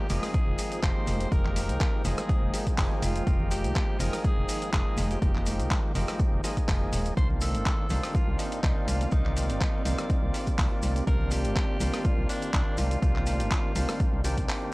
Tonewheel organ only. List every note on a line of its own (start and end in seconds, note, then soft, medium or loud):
0.09 0.80 F3 medium
0.09 0.80 G#3 medium
0.09 0.80 A#3 medium
0.09 0.80 D#4 medium
0.09 0.80 G#4 medium
0.83 1.29 F3 loud
0.83 1.29 G#3 medium
0.83 1.29 A#3 medium
0.83 1.29 D#4 medium
0.83 1.29 G4 loud
1.31 2.02 F3 medium
1.31 2.02 G#3 medium
1.31 2.02 A#3 medium
1.31 2.02 D#4 medium
1.31 2.02 G4 medium
2.05 3.24 F3 medium
2.05 3.24 G#3 medium
2.05 3.24 A#3 medium
2.05 3.24 D#4 medium
2.05 3.24 G#4 loud
3.27 3.97 F3 medium
3.27 3.97 G#3 medium
3.27 3.97 A#3 medium
3.27 3.97 D#4 medium
3.27 3.98 G4 medium
4.00 4.70 F3 medium
4.00 4.70 G#3 medium
4.00 4.71 A#3 medium
4.00 4.71 D#4 medium
4.00 4.71 G#4 loud
4.73 5.19 F3 loud
4.73 5.19 G#3 medium
4.73 5.19 A#3 medium
4.73 5.19 D#4 medium
4.73 5.19 G#4 loud
5.22 5.92 F3 medium
5.22 5.92 G#3 medium
5.22 5.92 A#3 medium
5.22 5.93 D#4 medium
5.22 5.93 G4 medium
5.95 6.42 F3 medium
5.95 6.42 G#3 medium
5.95 6.42 A#3 medium
5.95 6.42 D#4 medium
5.95 6.42 G4 loud
6.44 7.14 F3 medium
6.44 7.14 G#3 medium
6.44 7.14 A#3 medium
6.44 7.15 D#4 medium
6.44 7.15 G#4 loud
7.17 7.87 D#3 medium
7.17 7.87 A#3 medium
7.17 7.88 C4 medium
7.17 7.88 D4 medium
7.17 7.88 F4 medium
7.90 8.61 D#3 medium
7.90 8.61 A#3 medium
7.90 8.61 C4 medium
7.90 8.61 D4 medium
7.90 8.61 F4 medium
8.63 9.09 D#3 loud
8.63 9.09 A#3 medium
8.63 9.10 C4 medium
8.63 9.10 D4 medium
8.63 9.10 F4 loud
9.12 9.82 D#3 medium
9.12 9.83 A#3 medium
9.12 9.83 C4 medium
9.12 9.83 F4 medium
9.12 9.83 D5 medium
9.85 11.04 D#3 medium
9.85 11.05 A#3 medium
9.85 11.05 C4 medium
9.85 11.05 F4 loud
9.85 11.05 D5 medium
11.07 11.78 D#3 medium
11.07 11.78 A#3 medium
11.07 11.78 C4 medium
11.07 11.78 D4 medium
11.07 11.78 F4 medium
11.80 12.51 D#3 medium
11.80 12.51 A#3 medium
11.80 12.51 C4 medium
11.80 12.51 D4 medium
11.80 12.51 F4 medium
12.53 13.00 D#3 loud
12.53 13.00 A#3 medium
12.53 13.00 C4 medium
12.53 13.00 D4 medium
12.53 13.00 F4 loud
13.02 13.73 D#3 medium
13.02 13.73 A#3 medium
13.02 13.73 C4 medium
13.02 13.73 D4 medium
13.02 13.73 F4 medium
13.75 14.22 D#3 medium
13.75 14.22 A#3 medium
13.75 14.22 C4 medium
13.75 14.22 D4 medium
13.75 14.22 F4 loud
14.24 14.74 D#3 loud
14.24 14.74 A#3 medium
14.24 14.74 C4 medium
14.24 14.74 D4 medium
14.24 14.74 G4 loud